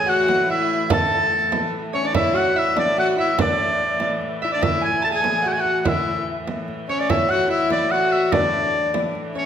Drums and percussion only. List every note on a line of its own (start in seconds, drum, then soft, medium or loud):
0.08 frame drum soft
0.28 frame drum medium
0.49 frame drum soft
0.90 frame drum loud
1.11 frame drum soft
1.52 frame drum medium
1.95 frame drum soft
2.14 frame drum medium
2.36 frame drum soft
2.77 frame drum medium
2.97 frame drum soft
3.19 frame drum soft
3.39 frame drum medium
3.59 frame drum soft
4.00 frame drum medium
4.21 frame drum soft
4.42 frame drum soft
4.63 frame drum medium
4.83 frame drum soft
5.24 frame drum medium
5.45 frame drum soft
5.65 frame drum soft
5.85 frame drum medium
6.48 frame drum medium
6.68 frame drum soft
6.89 frame drum soft
7.10 frame drum medium
7.31 frame drum soft
7.70 frame drum medium
7.91 frame drum soft
8.12 frame drum soft
8.32 frame drum medium
8.53 frame drum soft
8.94 frame drum medium
9.15 frame drum soft
9.35 frame drum soft